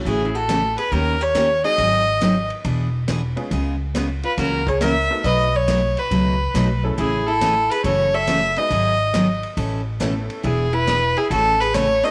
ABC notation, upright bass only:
X:1
M:4/4
L:1/8
Q:"Swing" 1/4=139
K:Alyd
V:1 name="Upright bass" clef=bass
A,,,4 D,,4 | G,,,4 E,,,4 | C,,4 C,,4 | B,,,4 C,,2 B,,,2 |
A,,,4 F,,,4 | G,,,4 A,,,4 | E,,,4 A,,,4 |]